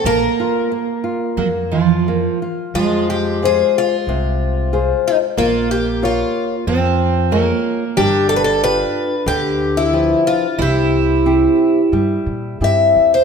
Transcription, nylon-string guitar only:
0.07 0.70 A#3 medium
0.40 0.70 F4 soft
0.72 1.03 A#3 medium
1.04 1.37 F4 medium
1.39 1.71 A#3 medium
1.73 2.06 F4 medium
2.08 2.41 A#3 medium
2.42 2.75 F4 soft
2.76 3.40 F3 medium
3.42 3.95 F4 soft
3.42 3.95 G#4 soft
3.42 3.95 C5 medium
4.09 4.71 C3 medium
4.73 5.25 F4 medium
4.73 5.25 G#4 soft
4.73 5.25 C5 medium
5.37 6.01 A#3 medium
6.03 6.55 F4 medium
6.03 6.55 A#4 soft
6.03 6.55 C#5 medium
6.68 7.30 F3 medium
7.31 7.83 F4 medium
7.31 7.84 A#4 medium
7.31 7.84 C#5 medium
7.98 8.60 G3 medium
8.63 9.14 F4 medium
8.63 9.14 G4 medium
8.63 9.15 B4 medium
9.26 9.90 D3 medium
9.93 10.46 F3 medium
9.93 10.46 G4 soft
9.93 10.46 B4 medium
10.59 11.24 C3 medium
11.26 11.80 C4 soft
11.26 11.80 E4 soft
11.26 11.80 G4 medium
11.93 12.60 G3 medium
12.61 13.16 C4 soft
12.61 13.16 E4 soft
12.61 13.17 G4 soft

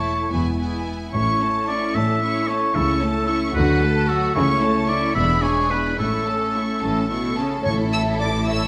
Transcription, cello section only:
0.00 0.19 E2 medium
0.31 1.02 E2 soft
1.13 1.83 A2 medium
1.96 2.64 A2 medium
2.75 3.44 C#3 medium
3.56 4.24 D3 medium
4.36 5.04 C#3 medium
5.17 5.87 E2 medium
5.99 6.70 A2 medium
6.82 7.08 A2 soft
7.10 7.37 B2 soft
7.38 7.66 C#3 soft
7.65 8.68 A2 medium

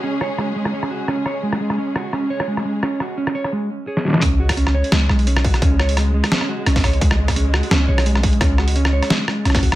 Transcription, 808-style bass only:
4.22 4.83 C#2 loud
4.92 5.08 C#2 loud
5.10 5.53 B1 loud
5.62 6.22 C#2 loud
6.67 6.83 B1 loud
6.84 7.00 C#2 medium
7.01 7.62 C#2 loud
7.71 7.87 C#2 loud
7.89 8.32 B1 loud
8.41 9.01 C#2 loud
9.45 9.62 B1 loud
9.63 9.75 C#2 medium

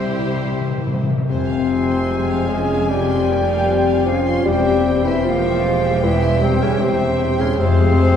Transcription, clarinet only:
0.00 0.92 E4 medium
1.29 2.50 C4 medium
2.49 2.91 G#4 medium
2.89 4.06 G4 loud
4.07 4.47 F4 medium
4.46 5.04 G4 medium
5.04 5.26 E4 medium
5.25 6.02 F4 loud
6.02 6.43 E4 loud
6.41 6.62 C4 medium
6.61 6.81 C#4 medium
6.79 7.41 C4 medium
7.40 7.60 C#4 medium
7.58 8.16 C4 loud

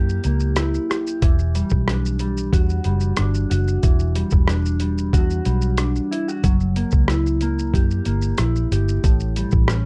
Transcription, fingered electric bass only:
0.00 0.18 F#2 medium
0.25 0.77 C#2 medium
1.22 1.62 E1 loud
1.72 2.49 B1 medium
2.53 2.79 E2 loud
2.85 3.12 F#1 medium
3.19 3.45 G1 medium
3.51 3.77 F#1 loud
3.83 4.22 E1 loud
4.33 5.15 E1 medium
5.13 5.39 E2 loud
5.46 5.98 B1 loud
6.44 6.83 F#1 loud
6.93 7.70 C#2 loud
7.74 8.00 F#2 loud
8.06 8.32 G1 medium
8.39 8.65 A#1 medium
8.72 8.97 G1 loud
9.04 9.43 A1 loud
9.53 9.86 A1 medium

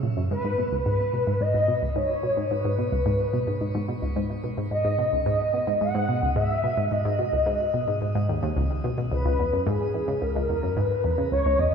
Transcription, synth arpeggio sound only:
0.03 0.12 A#2 medium
0.17 0.30 F#2 loud
0.31 0.43 G#2 medium
0.44 0.53 G#2 medium
0.58 0.71 B2 medium
0.72 0.85 C#2 medium
0.86 0.95 G#2 loud
1.13 1.22 B2 medium
1.27 1.36 G#2 medium
1.41 1.53 G#2 medium
1.54 1.63 G#2 loud
1.68 1.81 B2 medium
1.82 1.95 C#2 medium
1.96 2.05 G#2 loud
2.23 2.32 B2 medium
2.37 2.46 G#2 medium
2.51 2.63 G#2 medium
2.65 2.74 G#2 loud
2.78 2.91 B2 medium
2.92 3.05 C#2 medium
3.06 3.15 G#2 medium
3.33 3.42 B2 medium
3.47 3.56 G#2 medium
3.61 3.74 G#2 medium
3.75 3.84 G#2 medium
3.88 4.02 B2 medium
4.02 4.15 C#2 medium
4.16 4.25 G#2 medium
4.44 4.53 B2 medium
4.57 4.66 G#2 medium
4.71 4.84 G#2 medium
4.85 4.94 G#2 loud
4.99 5.12 B2 medium
5.12 5.25 C#2 medium
5.26 5.35 G#2 loud
5.54 5.63 B2 medium
5.67 5.76 G#2 medium
5.81 5.94 G#2 medium
5.95 6.04 G#2 loud
6.09 6.22 B2 medium
6.23 6.36 C#2 medium
6.36 6.45 G#2 loud
6.64 6.73 B2 medium
6.77 6.86 G#2 medium
6.91 7.04 G#2 medium
7.05 7.14 G#2 loud
7.19 7.32 B2 medium
7.32 7.46 C#2 medium
7.46 7.55 G#2 loud
7.74 7.83 B2 medium
7.88 7.97 G#2 medium
8.02 8.14 G#2 medium
8.15 8.24 G#2 loud
8.29 8.38 D#2 medium
8.43 8.48 D#2 loud
8.57 8.65 C#2 medium
8.84 8.93 B2 medium
8.98 9.07 B2 medium
9.12 9.24 C#2 medium
9.25 9.34 C#2 loud
9.39 9.52 E2 medium
9.53 9.66 F#2 medium
9.67 9.72 G#2 loud
9.94 10.03 E2 medium
10.08 10.17 C#3 medium
10.22 10.34 C#2 medium
10.36 10.44 C#2 loud
10.49 10.62 E2 medium
10.63 10.76 F#2 medium
10.77 10.82 G#2 loud
11.04 11.13 E2 medium
11.18 11.27 C#3 medium
11.32 11.44 C#2 medium
11.46 11.54 C#2 loud
11.59 11.72 E2 medium

